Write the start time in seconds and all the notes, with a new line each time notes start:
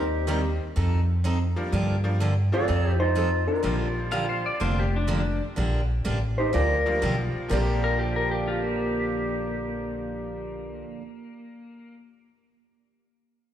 Already playing: D#2 D#4 G4 C5
0.27 D#3 G3 A#3 C4 D#4 G4 A#4
0.76 F2 F3 C4 D#4 A4
1.24 F3 C4 D#4 A4
1.56 F3 G3 A#3 D4 F4
1.72 G2 D3 F3 A#3 D4 G4
2.04 F3 G3 A#3 D4 F4
2.20 D3 F3 A#3 D4 G4
2.52 F3 A3 C4 D#4 F4 A4 D5
2.68 F2 F3 C4 D#4 A4
3.00 D#4 F4 C5
3.15 F3 C4 D#4 A4
3.48 D4 F4 A#4
3.63 A#1 D3 F3 G3 A#3 D4 F4 G4
4.11 D3 F3 A#3 D4 G4 F5
4.29 C5
4.46 D5
4.60 F1 D3 F3 A#3 D4 G4 C5
4.79 G4
4.96 D4
5.07 D3 F3 A#3 D4 G4
5.56 A#1 D3 F3 A#3 D4 G4
6.05 A1 D3 F3 A#3 D4 G4
6.38 D#4 G4 C5
6.53 D2 D3 F3 A#3 D4 F4 G4 A#4 D5
6.85 F3 G3 A#3 D4 F4
7.02 B1 D3 F3 A#3 D4 G4
7.34 muted upright bass stroke
7.48 A#1 A#2 D3 F3 A#3 C4 D4 G4 A#4
7.53 G4
7.84 A#4
7.99 G4
8.16 A#4
8.31 G4
8.48 F4
8.63 A#3